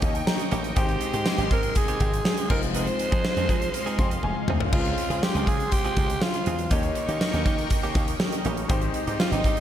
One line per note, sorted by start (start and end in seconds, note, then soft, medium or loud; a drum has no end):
0.00 0.21 D#2 medium
0.00 2.53 D#3 medium
0.00 0.17 D#3 medium
0.00 0.72 A#3 medium
0.00 0.75 A#3 medium
0.00 0.14 A#3 medium
0.00 0.72 C#4 medium
0.00 0.14 C#4 medium
0.00 0.72 D#4 medium
0.00 0.76 D#4 medium
0.00 0.73 G4 medium
0.00 0.13 G4 medium
0.00 0.74 A#4 medium
0.00 0.73 C#5 medium
0.00 2.46 D#5 medium
0.00 0.14 D#5 medium
0.00 2.46 G5 medium
0.00 0.75 C#6 loud
0.00 kick loud
0.00 closed hi-hat medium
0.14 0.26 G5 medium
0.14 closed hi-hat medium
0.26 0.73 A#5 medium
0.26 muted clean electric guitar stroke soft
0.26 snare loud
0.26 tambourine medium
0.39 muted clean electric guitar stroke soft
0.39 closed hi-hat medium
0.51 0.70 A1 loud
0.51 0.71 D#3 medium
0.51 0.64 A#3 medium
0.51 0.63 C#4 loud
0.51 0.62 G4 loud
0.51 closed hi-hat medium
0.64 muted clean electric guitar stroke soft
0.64 closed hi-hat medium
0.75 0.95 G#1 loud
0.75 0.96 D#3 medium
0.75 1.25 G#3 medium
0.75 0.88 G#3 medium
0.75 2.46 G#3 medium
0.75 4.69 G#3 medium
0.75 2.46 C4 medium
0.75 0.88 C4 medium
0.75 1.27 D#4 medium
0.75 2.47 D#4 medium
0.75 0.87 G4 loud
0.75 1.48 G4 medium
0.75 2.48 C5 medium
0.75 2.47 G5 medium
0.75 2.48 C6 loud
0.75 kick loud
0.75 closed hi-hat loud
0.89 muted clean electric guitar stroke soft
0.89 closed hi-hat soft
1.01 muted clean electric guitar stroke soft
1.01 closed hi-hat medium
1.13 1.23 G#2 medium
1.13 1.25 D#3 medium
1.13 1.25 G#3 medium
1.13 1.26 C4 medium
1.13 1.26 G4 medium
1.13 closed hi-hat medium
1.26 1.75 G#3 medium
1.26 1.77 D#4 medium
1.26 1.78 G#4 medium
1.26 snare loud
1.26 tambourine medium
1.38 1.47 G#1 loud
1.38 1.50 D#3 medium
1.38 1.50 G#3 medium
1.38 1.51 C4 medium
1.38 1.51 G4 medium
1.38 closed hi-hat medium
1.51 1.70 G#2 loud
1.51 1.71 D#3 medium
1.51 1.64 G#3 medium
1.51 1.63 C4 loud
1.51 1.63 G4 medium
1.51 1.75 A#4 loud
1.51 kick loud
1.51 closed hi-hat medium
1.63 muted clean electric guitar stroke soft
1.63 closed hi-hat medium
1.75 2.52 G#3 medium
1.75 2.51 D#4 medium
1.75 2.47 G#4 loud
1.75 2.49 G#4 medium
1.75 muted clean electric guitar stroke soft
1.75 kick loud
1.75 closed hi-hat loud
1.88 1.99 D#3 medium
1.88 2.00 G#3 medium
1.88 2.00 C4 medium
1.88 2.01 G4 medium
1.88 closed hi-hat medium
2.00 2.19 G#1 medium
2.00 2.16 D#3 medium
2.00 2.13 G#3 medium
2.00 2.12 C4 medium
2.00 2.12 G4 medium
2.00 kick loud
2.00 closed hi-hat medium
2.13 muted clean electric guitar stroke medium
2.13 closed hi-hat medium
2.25 muted clean electric guitar stroke soft
2.25 snare loud
2.25 tambourine medium
2.37 muted clean electric guitar stroke soft
2.37 closed hi-hat medium
2.49 2.87 F1 loud
2.49 2.70 F3 medium
2.49 3.24 F3 medium
2.49 4.44 G#3 medium
2.49 4.44 C4 medium
2.49 2.63 C4 loud
2.49 3.26 C4 medium
2.49 4.45 D#4 medium
2.49 2.62 D#4 medium
2.49 3.27 F4 medium
2.49 4.45 F4 medium
2.49 2.62 G#4 medium
2.49 2.62 A#4 loud
2.49 4.45 C5 medium
2.49 4.71 D#5 medium
2.49 6.67 F5 medium
2.49 4.71 C6 medium
2.49 kick loud
2.49 crash medium
2.62 muted clean electric guitar stroke soft
2.62 closed hi-hat medium
2.75 2.94 F3 medium
2.75 2.87 C4 medium
2.75 2.87 D#4 medium
2.75 2.86 G#4 medium
2.75 4.20 C5 loud
2.75 closed hi-hat loud
2.87 muted clean electric guitar stroke medium
2.87 closed hi-hat medium
2.99 muted clean electric guitar stroke soft
2.99 closed hi-hat medium
3.12 3.21 F3 loud
3.12 3.24 F3 medium
3.12 3.24 C4 medium
3.12 3.24 D#4 medium
3.12 3.24 G#4 medium
3.12 kick loud
3.12 closed hi-hat medium
3.24 3.72 F3 medium
3.24 3.76 C4 medium
3.24 3.79 F4 medium
3.24 muted clean electric guitar stroke soft
3.24 snare loud
3.24 tambourine medium
3.37 3.46 F2 loud
3.37 3.48 F3 soft
3.37 3.49 C4 soft
3.37 3.49 D#4 medium
3.37 3.50 G#4 medium
3.37 closed hi-hat medium
3.49 3.68 F3 loud
3.49 3.69 F3 medium
3.49 3.62 C4 medium
3.49 3.61 D#4 medium
3.49 3.61 G#4 loud
3.49 kick medium
3.49 closed hi-hat medium
3.62 muted clean electric guitar stroke medium
3.62 closed hi-hat medium
3.72 4.72 F3 medium
3.72 4.74 C4 medium
3.72 muted clean electric guitar stroke soft
3.72 closed hi-hat loud
3.79 4.76 F4 medium
3.86 3.98 F3 medium
3.86 3.98 C4 medium
3.86 3.99 D#4 medium
3.86 4.00 G#4 medium
3.86 closed hi-hat medium
3.99 4.17 F2 loud
3.99 4.14 F3 medium
3.99 4.12 C4 medium
3.99 4.11 D#4 medium
3.99 4.11 G#4 medium
3.99 4.22 C6 medium
3.99 kick loud
3.99 closed hi-hat medium
4.11 muted clean electric guitar stroke medium
4.11 closed hi-hat medium
4.23 4.33 F1 medium
4.23 4.70 G#5 medium
4.23 muted clean electric guitar stroke soft
4.23 high tom medium
4.36 muted clean electric guitar stroke soft
4.47 4.66 D2 medium
4.47 4.68 F3 medium
4.47 4.61 C4 loud
4.47 4.61 D#4 medium
4.47 4.60 G#4 loud
4.47 mid tom loud
4.60 muted clean electric guitar stroke soft
4.60 floor tom medium
4.71 4.91 C#2 loud
4.71 5.21 C#3 medium
4.71 6.67 G#3 medium
4.71 4.93 G#3 medium
4.71 6.70 G#3 medium
4.71 5.22 G#3 medium
4.71 6.67 C4 medium
4.71 4.86 C4 medium
4.71 6.67 C#4 medium
4.71 5.24 C#4 medium
4.71 6.68 F4 medium
4.71 5.25 F4 loud
4.71 4.86 F4 medium
4.71 4.85 G#4 medium
4.71 4.79 B4 medium
4.71 6.70 C5 medium
4.71 6.70 C6 loud
4.71 kick loud
4.71 crash medium
4.80 6.71 C5 medium
4.85 muted clean electric guitar stroke soft
4.85 closed hi-hat soft
4.98 muted clean electric guitar stroke soft
4.98 closed hi-hat medium
5.10 5.19 C#3 loud
5.10 5.21 G#3 medium
5.10 5.22 C4 medium
5.10 5.22 F4 medium
5.10 5.22 G#4 medium
5.10 closed hi-hat medium
5.22 5.68 C#3 medium
5.22 5.73 G#3 medium
5.22 5.76 C#4 medium
5.22 5.49 G4 loud
5.22 muted clean electric guitar stroke soft
5.22 snare loud
5.22 tambourine medium
5.35 5.44 C#2 medium
5.35 5.46 G#3 medium
5.35 5.47 C4 medium
5.35 5.47 F4 medium
5.35 5.47 G#4 medium
5.35 closed hi-hat soft
5.47 5.66 C#3 loud
5.47 5.67 G#3 medium
5.47 5.60 C4 medium
5.47 5.59 F4 loud
5.47 5.74 G#4 loud
5.47 5.58 G#4 medium
5.47 kick medium
5.47 closed hi-hat medium
5.60 muted clean electric guitar stroke soft
5.60 closed hi-hat medium
5.70 6.70 C#3 medium
5.70 6.24 G4 loud
5.70 muted clean electric guitar stroke soft
5.70 kick medium
5.70 closed hi-hat loud
5.74 6.71 G#3 medium
5.74 6.72 C#4 medium
5.85 5.96 G#3 medium
5.85 5.96 C4 medium
5.85 5.97 F4 medium
5.85 5.97 G#4 medium
5.85 closed hi-hat medium
5.96 6.16 C#2 medium
5.96 6.13 G#3 medium
5.96 6.09 C4 medium
5.96 6.09 F4 medium
5.96 6.08 G#4 medium
5.96 kick loud
5.96 closed hi-hat medium
6.10 muted clean electric guitar stroke soft
6.10 closed hi-hat medium
6.21 6.71 F4 loud
6.21 muted clean electric guitar stroke soft
6.21 snare loud
6.21 tambourine medium
6.34 muted clean electric guitar stroke soft
6.34 closed hi-hat medium
6.46 6.65 E2 loud
6.46 6.66 G#3 medium
6.46 6.59 C4 loud
6.46 6.58 F4 loud
6.46 6.58 G#4 loud
6.46 closed hi-hat medium
6.59 muted clean electric guitar stroke medium
6.59 closed hi-hat medium
6.70 6.90 D#2 loud
6.70 7.20 D#3 medium
6.70 6.91 D#3 medium
6.70 8.65 A#3 medium
6.70 6.83 A#3 medium
6.70 7.21 A#3 medium
6.70 8.66 C#4 medium
6.70 6.83 C#4 medium
6.70 8.66 D#4 medium
6.70 7.67 D#4 loud
6.70 7.23 D#4 loud
6.70 8.66 G4 medium
6.70 6.82 G4 loud
6.70 8.68 A#4 medium
6.70 8.66 C#5 medium
6.70 9.60 D#5 medium
6.70 8.68 G5 medium
6.70 8.68 C#6 loud
6.70 kick loud
6.70 closed hi-hat loud
6.83 muted clean electric guitar stroke soft
6.83 closed hi-hat medium
6.95 muted clean electric guitar stroke soft
6.95 closed hi-hat medium
7.08 7.18 D#3 loud
7.08 7.20 D#3 medium
7.08 7.20 A#3 medium
7.08 7.20 C#4 medium
7.08 7.20 G4 medium
7.08 closed hi-hat medium
7.20 7.68 D#3 medium
7.20 7.71 A#3 medium
7.20 7.75 D#4 medium
7.20 snare loud
7.20 tambourine medium
7.33 7.43 D#2 loud
7.33 7.45 D#3 soft
7.33 7.45 A#3 medium
7.33 7.45 C#4 medium
7.33 7.46 G4 medium
7.33 closed hi-hat medium
7.46 7.65 D#3 medium
7.46 7.64 D#3 loud
7.46 7.58 A#3 medium
7.46 7.57 C#4 medium
7.46 7.57 G4 medium
7.46 kick loud
7.46 closed hi-hat medium
7.58 muted clean electric guitar stroke medium
7.58 closed hi-hat medium
7.69 9.60 D#3 medium
7.69 8.69 A#3 medium
7.69 muted clean electric guitar stroke medium
7.69 kick medium
7.69 closed hi-hat loud
7.76 8.71 D#4 medium
7.83 7.94 D#3 medium
7.83 7.95 A#3 medium
7.83 7.95 C#4 medium
7.83 7.96 G4 medium
7.83 closed hi-hat soft
7.95 8.14 D#2 medium
7.95 8.11 D#3 medium
7.95 8.07 A#3 medium
7.95 8.07 C#4 medium
7.95 8.06 G4 medium
7.95 kick loud
7.95 closed hi-hat medium
8.08 muted clean electric guitar stroke medium
8.08 closed hi-hat medium
8.20 muted clean electric guitar stroke soft
8.20 snare loud
8.20 tambourine medium
8.32 muted clean electric guitar stroke soft
8.32 closed hi-hat medium
8.45 8.64 A1 loud
8.45 8.65 D#3 medium
8.45 8.58 A#3 loud
8.45 8.57 C#4 loud
8.45 8.57 G4 loud
8.45 closed hi-hat medium
8.57 muted clean electric guitar stroke soft
8.57 closed hi-hat medium
8.68 8.88 G#1 loud
8.68 8.89 G3 medium
8.68 9.60 G#3 medium
8.68 9.19 G#3 medium
8.68 9.60 G#3 medium
8.68 9.60 C4 medium
8.68 8.82 C4 medium
8.68 9.60 D#4 medium
8.68 8.82 D#4 medium
8.68 9.21 D#4 loud
8.68 9.60 G4 medium
8.68 8.81 G4 medium
8.68 9.22 G#4 loud
8.68 9.60 C5 loud
8.68 9.60 G5 medium
8.68 9.60 C6 loud
8.68 kick loud
8.68 closed hi-hat loud
8.82 muted clean electric guitar stroke medium
8.82 closed hi-hat soft
8.94 muted clean electric guitar stroke soft
8.94 closed hi-hat medium
9.07 9.17 G#2 loud
9.07 9.18 G3 medium
9.07 9.19 C4 medium
9.07 9.19 D#4 medium
9.07 9.19 G4 medium
9.07 closed hi-hat medium
9.19 9.60 G#3 medium
9.19 9.60 D#4 medium
9.19 9.33 F4 medium
9.19 9.60 G#4 medium
9.19 muted clean electric guitar stroke soft
9.19 snare loud
9.19 tambourine medium
9.31 9.41 G#1 medium
9.31 9.44 G3 soft
9.31 9.44 C4 medium
9.31 9.60 D#4 loud
9.31 9.44 D#4 medium
9.31 9.45 G4 medium
9.31 closed hi-hat medium
9.44 9.60 G#2 loud
9.44 9.60 G3 medium
9.44 9.57 C4 medium
9.44 9.57 D#4 medium
9.44 9.56 G4 medium
9.44 kick medium
9.44 closed hi-hat medium
9.57 closed hi-hat medium